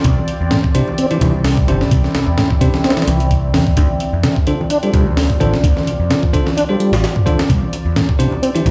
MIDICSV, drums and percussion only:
0, 0, Header, 1, 2, 480
1, 0, Start_track
1, 0, Tempo, 465116
1, 57, Time_signature, 4, 2, 24, 8
1, 8988, End_track
2, 0, Start_track
2, 0, Title_t, "Drums"
2, 44, Note_on_c, 9, 42, 92
2, 50, Note_on_c, 9, 36, 112
2, 148, Note_off_c, 9, 42, 0
2, 153, Note_off_c, 9, 36, 0
2, 190, Note_on_c, 9, 63, 90
2, 287, Note_on_c, 9, 42, 71
2, 293, Note_off_c, 9, 63, 0
2, 299, Note_on_c, 9, 62, 52
2, 390, Note_off_c, 9, 42, 0
2, 402, Note_off_c, 9, 62, 0
2, 430, Note_on_c, 9, 62, 32
2, 525, Note_on_c, 9, 38, 106
2, 525, Note_on_c, 9, 42, 86
2, 533, Note_off_c, 9, 62, 0
2, 535, Note_on_c, 9, 63, 65
2, 628, Note_off_c, 9, 38, 0
2, 628, Note_off_c, 9, 42, 0
2, 638, Note_off_c, 9, 63, 0
2, 662, Note_on_c, 9, 36, 97
2, 668, Note_on_c, 9, 62, 46
2, 766, Note_off_c, 9, 36, 0
2, 771, Note_on_c, 9, 42, 72
2, 772, Note_off_c, 9, 62, 0
2, 874, Note_off_c, 9, 42, 0
2, 904, Note_on_c, 9, 62, 60
2, 913, Note_on_c, 9, 63, 92
2, 1007, Note_off_c, 9, 62, 0
2, 1012, Note_on_c, 9, 42, 87
2, 1017, Note_off_c, 9, 63, 0
2, 1115, Note_off_c, 9, 42, 0
2, 1143, Note_on_c, 9, 42, 46
2, 1246, Note_off_c, 9, 42, 0
2, 1252, Note_on_c, 9, 42, 70
2, 1254, Note_on_c, 9, 36, 95
2, 1260, Note_on_c, 9, 64, 86
2, 1355, Note_off_c, 9, 42, 0
2, 1357, Note_off_c, 9, 36, 0
2, 1363, Note_off_c, 9, 64, 0
2, 1387, Note_on_c, 9, 63, 64
2, 1491, Note_off_c, 9, 63, 0
2, 1491, Note_on_c, 9, 38, 121
2, 1491, Note_on_c, 9, 46, 81
2, 1595, Note_off_c, 9, 38, 0
2, 1595, Note_off_c, 9, 46, 0
2, 1625, Note_on_c, 9, 36, 104
2, 1728, Note_off_c, 9, 36, 0
2, 1736, Note_on_c, 9, 42, 65
2, 1737, Note_on_c, 9, 63, 96
2, 1839, Note_off_c, 9, 42, 0
2, 1840, Note_off_c, 9, 63, 0
2, 1869, Note_on_c, 9, 38, 51
2, 1873, Note_on_c, 9, 64, 75
2, 1972, Note_off_c, 9, 38, 0
2, 1975, Note_on_c, 9, 42, 87
2, 1976, Note_off_c, 9, 64, 0
2, 1976, Note_on_c, 9, 36, 113
2, 2078, Note_off_c, 9, 42, 0
2, 2079, Note_off_c, 9, 36, 0
2, 2100, Note_on_c, 9, 63, 85
2, 2109, Note_on_c, 9, 38, 36
2, 2204, Note_off_c, 9, 63, 0
2, 2212, Note_off_c, 9, 38, 0
2, 2215, Note_on_c, 9, 38, 113
2, 2215, Note_on_c, 9, 42, 81
2, 2221, Note_on_c, 9, 64, 82
2, 2224, Note_on_c, 9, 62, 52
2, 2319, Note_off_c, 9, 38, 0
2, 2319, Note_off_c, 9, 42, 0
2, 2324, Note_off_c, 9, 64, 0
2, 2328, Note_off_c, 9, 62, 0
2, 2357, Note_on_c, 9, 62, 32
2, 2453, Note_on_c, 9, 38, 114
2, 2453, Note_on_c, 9, 42, 84
2, 2460, Note_off_c, 9, 62, 0
2, 2468, Note_on_c, 9, 63, 65
2, 2556, Note_off_c, 9, 38, 0
2, 2556, Note_off_c, 9, 42, 0
2, 2571, Note_off_c, 9, 63, 0
2, 2585, Note_on_c, 9, 36, 101
2, 2591, Note_on_c, 9, 62, 53
2, 2689, Note_off_c, 9, 36, 0
2, 2694, Note_off_c, 9, 62, 0
2, 2695, Note_on_c, 9, 36, 97
2, 2696, Note_on_c, 9, 42, 71
2, 2798, Note_off_c, 9, 36, 0
2, 2800, Note_off_c, 9, 42, 0
2, 2826, Note_on_c, 9, 38, 59
2, 2831, Note_on_c, 9, 63, 97
2, 2838, Note_on_c, 9, 62, 61
2, 2929, Note_off_c, 9, 38, 0
2, 2934, Note_off_c, 9, 63, 0
2, 2934, Note_on_c, 9, 38, 93
2, 2934, Note_on_c, 9, 42, 68
2, 2941, Note_off_c, 9, 62, 0
2, 2997, Note_off_c, 9, 38, 0
2, 2997, Note_off_c, 9, 42, 0
2, 2997, Note_on_c, 9, 38, 91
2, 2997, Note_on_c, 9, 42, 69
2, 3065, Note_off_c, 9, 38, 0
2, 3065, Note_off_c, 9, 42, 0
2, 3065, Note_on_c, 9, 38, 85
2, 3065, Note_on_c, 9, 42, 64
2, 3118, Note_off_c, 9, 38, 0
2, 3118, Note_off_c, 9, 42, 0
2, 3118, Note_on_c, 9, 38, 86
2, 3118, Note_on_c, 9, 42, 65
2, 3173, Note_off_c, 9, 42, 0
2, 3173, Note_on_c, 9, 42, 83
2, 3221, Note_off_c, 9, 38, 0
2, 3276, Note_off_c, 9, 42, 0
2, 3305, Note_on_c, 9, 42, 39
2, 3311, Note_on_c, 9, 63, 72
2, 3408, Note_off_c, 9, 42, 0
2, 3414, Note_off_c, 9, 63, 0
2, 3414, Note_on_c, 9, 36, 88
2, 3414, Note_on_c, 9, 42, 65
2, 3518, Note_off_c, 9, 36, 0
2, 3518, Note_off_c, 9, 42, 0
2, 3648, Note_on_c, 9, 63, 106
2, 3654, Note_on_c, 9, 38, 106
2, 3654, Note_on_c, 9, 46, 71
2, 3751, Note_off_c, 9, 63, 0
2, 3757, Note_off_c, 9, 38, 0
2, 3757, Note_off_c, 9, 46, 0
2, 3784, Note_on_c, 9, 36, 93
2, 3888, Note_off_c, 9, 36, 0
2, 3888, Note_on_c, 9, 42, 91
2, 3893, Note_on_c, 9, 36, 112
2, 3992, Note_off_c, 9, 42, 0
2, 3996, Note_off_c, 9, 36, 0
2, 4026, Note_on_c, 9, 63, 81
2, 4129, Note_off_c, 9, 63, 0
2, 4131, Note_on_c, 9, 42, 69
2, 4132, Note_on_c, 9, 62, 54
2, 4234, Note_off_c, 9, 42, 0
2, 4236, Note_off_c, 9, 62, 0
2, 4272, Note_on_c, 9, 62, 40
2, 4371, Note_on_c, 9, 38, 108
2, 4371, Note_on_c, 9, 42, 90
2, 4375, Note_off_c, 9, 62, 0
2, 4378, Note_on_c, 9, 63, 66
2, 4474, Note_off_c, 9, 38, 0
2, 4474, Note_off_c, 9, 42, 0
2, 4481, Note_off_c, 9, 63, 0
2, 4504, Note_on_c, 9, 36, 100
2, 4510, Note_on_c, 9, 62, 50
2, 4607, Note_off_c, 9, 36, 0
2, 4611, Note_on_c, 9, 42, 71
2, 4613, Note_off_c, 9, 62, 0
2, 4714, Note_off_c, 9, 42, 0
2, 4756, Note_on_c, 9, 63, 86
2, 4758, Note_on_c, 9, 62, 69
2, 4851, Note_on_c, 9, 42, 93
2, 4859, Note_off_c, 9, 63, 0
2, 4861, Note_off_c, 9, 62, 0
2, 4955, Note_off_c, 9, 42, 0
2, 4983, Note_on_c, 9, 42, 43
2, 5086, Note_off_c, 9, 42, 0
2, 5093, Note_on_c, 9, 42, 72
2, 5095, Note_on_c, 9, 36, 95
2, 5104, Note_on_c, 9, 64, 79
2, 5196, Note_off_c, 9, 42, 0
2, 5198, Note_off_c, 9, 36, 0
2, 5207, Note_off_c, 9, 64, 0
2, 5231, Note_on_c, 9, 63, 74
2, 5334, Note_off_c, 9, 63, 0
2, 5337, Note_on_c, 9, 38, 118
2, 5337, Note_on_c, 9, 46, 81
2, 5440, Note_off_c, 9, 38, 0
2, 5440, Note_off_c, 9, 46, 0
2, 5468, Note_on_c, 9, 36, 98
2, 5571, Note_off_c, 9, 36, 0
2, 5578, Note_on_c, 9, 63, 103
2, 5581, Note_on_c, 9, 42, 67
2, 5682, Note_off_c, 9, 63, 0
2, 5684, Note_off_c, 9, 42, 0
2, 5695, Note_on_c, 9, 64, 73
2, 5713, Note_on_c, 9, 38, 52
2, 5798, Note_off_c, 9, 64, 0
2, 5817, Note_off_c, 9, 38, 0
2, 5818, Note_on_c, 9, 36, 115
2, 5820, Note_on_c, 9, 42, 95
2, 5921, Note_off_c, 9, 36, 0
2, 5923, Note_off_c, 9, 42, 0
2, 5946, Note_on_c, 9, 63, 90
2, 5954, Note_on_c, 9, 38, 40
2, 6049, Note_off_c, 9, 63, 0
2, 6051, Note_on_c, 9, 64, 75
2, 6057, Note_off_c, 9, 38, 0
2, 6062, Note_on_c, 9, 42, 71
2, 6067, Note_on_c, 9, 62, 58
2, 6154, Note_off_c, 9, 64, 0
2, 6165, Note_off_c, 9, 42, 0
2, 6170, Note_off_c, 9, 62, 0
2, 6186, Note_on_c, 9, 62, 33
2, 6289, Note_off_c, 9, 62, 0
2, 6292, Note_on_c, 9, 63, 68
2, 6301, Note_on_c, 9, 38, 107
2, 6301, Note_on_c, 9, 42, 87
2, 6395, Note_off_c, 9, 63, 0
2, 6404, Note_off_c, 9, 38, 0
2, 6404, Note_off_c, 9, 42, 0
2, 6424, Note_on_c, 9, 62, 51
2, 6430, Note_on_c, 9, 36, 101
2, 6527, Note_off_c, 9, 62, 0
2, 6533, Note_off_c, 9, 36, 0
2, 6539, Note_on_c, 9, 36, 93
2, 6544, Note_on_c, 9, 42, 71
2, 6643, Note_off_c, 9, 36, 0
2, 6647, Note_off_c, 9, 42, 0
2, 6667, Note_on_c, 9, 62, 66
2, 6669, Note_on_c, 9, 63, 97
2, 6674, Note_on_c, 9, 38, 58
2, 6770, Note_off_c, 9, 62, 0
2, 6772, Note_off_c, 9, 63, 0
2, 6777, Note_off_c, 9, 38, 0
2, 6786, Note_on_c, 9, 42, 87
2, 6889, Note_off_c, 9, 42, 0
2, 7020, Note_on_c, 9, 42, 68
2, 7123, Note_off_c, 9, 42, 0
2, 7151, Note_on_c, 9, 63, 66
2, 7152, Note_on_c, 9, 38, 117
2, 7254, Note_off_c, 9, 63, 0
2, 7255, Note_off_c, 9, 38, 0
2, 7263, Note_on_c, 9, 38, 108
2, 7263, Note_on_c, 9, 42, 83
2, 7366, Note_off_c, 9, 38, 0
2, 7366, Note_off_c, 9, 42, 0
2, 7389, Note_on_c, 9, 36, 91
2, 7493, Note_off_c, 9, 36, 0
2, 7499, Note_on_c, 9, 36, 88
2, 7502, Note_on_c, 9, 42, 59
2, 7504, Note_on_c, 9, 63, 91
2, 7602, Note_off_c, 9, 36, 0
2, 7605, Note_off_c, 9, 42, 0
2, 7607, Note_off_c, 9, 63, 0
2, 7630, Note_on_c, 9, 38, 114
2, 7630, Note_on_c, 9, 42, 82
2, 7733, Note_off_c, 9, 38, 0
2, 7733, Note_off_c, 9, 42, 0
2, 7738, Note_on_c, 9, 36, 116
2, 7739, Note_on_c, 9, 42, 90
2, 7841, Note_off_c, 9, 36, 0
2, 7842, Note_off_c, 9, 42, 0
2, 7868, Note_on_c, 9, 63, 82
2, 7972, Note_off_c, 9, 63, 0
2, 7977, Note_on_c, 9, 42, 70
2, 7981, Note_on_c, 9, 62, 58
2, 8080, Note_off_c, 9, 42, 0
2, 8084, Note_off_c, 9, 62, 0
2, 8110, Note_on_c, 9, 62, 38
2, 8214, Note_off_c, 9, 62, 0
2, 8215, Note_on_c, 9, 63, 66
2, 8218, Note_on_c, 9, 38, 116
2, 8218, Note_on_c, 9, 42, 85
2, 8318, Note_off_c, 9, 63, 0
2, 8321, Note_off_c, 9, 38, 0
2, 8321, Note_off_c, 9, 42, 0
2, 8346, Note_on_c, 9, 62, 53
2, 8348, Note_on_c, 9, 36, 104
2, 8449, Note_off_c, 9, 62, 0
2, 8451, Note_off_c, 9, 36, 0
2, 8460, Note_on_c, 9, 42, 70
2, 8563, Note_off_c, 9, 42, 0
2, 8579, Note_on_c, 9, 63, 89
2, 8590, Note_on_c, 9, 62, 71
2, 8683, Note_off_c, 9, 63, 0
2, 8693, Note_off_c, 9, 62, 0
2, 8700, Note_on_c, 9, 42, 90
2, 8803, Note_off_c, 9, 42, 0
2, 8829, Note_on_c, 9, 42, 44
2, 8932, Note_off_c, 9, 42, 0
2, 8937, Note_on_c, 9, 36, 99
2, 8938, Note_on_c, 9, 42, 73
2, 8938, Note_on_c, 9, 64, 75
2, 8988, Note_off_c, 9, 36, 0
2, 8988, Note_off_c, 9, 42, 0
2, 8988, Note_off_c, 9, 64, 0
2, 8988, End_track
0, 0, End_of_file